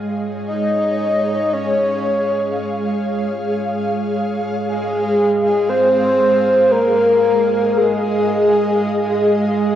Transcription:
Already playing: G#3 G#4 C#5 D#5
0.48 D#5
0.93 F5
1.53 C#5
4.69 G#4
5.69 C5
6.71 A#4 D#5
7.77 G#4

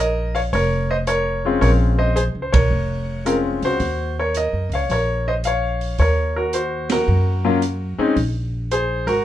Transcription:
Already playing: A#1
0.00 A#4 D#5
0.35 C#5 F5, open hi-hat
0.53 F1 A#4 C#5, kick, open hi-hat
0.91 C5 D#5
1.07 A#4 C#5, closed hi-hat
1.45 G#3 C4 C#4 F4
1.61 A#1 A#4 C#5, kick, open hi-hat
1.98 C5 D#5
2.16 G#4 C5, closed hi-hat
2.35 C#2
2.42 C5
2.53 B1 A#4 C#5, kick, ride
2.70 F1
3.25 G#3 C4 C#4 F4 A#4, closed hi-hat
3.62 C#2 F#4 C5, open hi-hat
3.80 D#2, kick, open hi-hat
4.19 A#4 C#5
4.35 A#4 D#5, closed hi-hat
4.53 F#2
4.69 C#2, open hi-hat
4.74 C#5 F5
4.89 A#1 A#4 C#5, kick, open hi-hat
5.28 C5 D#5
5.44 C#5 F5, closed hi-hat
5.81 open hi-hat
5.98 D#2 A#4 C#5, kick, open hi-hat
6.36 F#4 A#4
6.53 F#4 C5, closed hi-hat
6.90 F#4 A#4, snare, ride
7.08 F#2
7.45 F#3 A#3 C#4 F4
7.62 closed hi-hat
7.98 G#3 C4 C#4 D#4, muted upright bass stroke
8.16 A#1, kick, open hi-hat
8.71 G#4 C5, closed hi-hat
9.07 G#1 F#4 A#4, open hi-hat

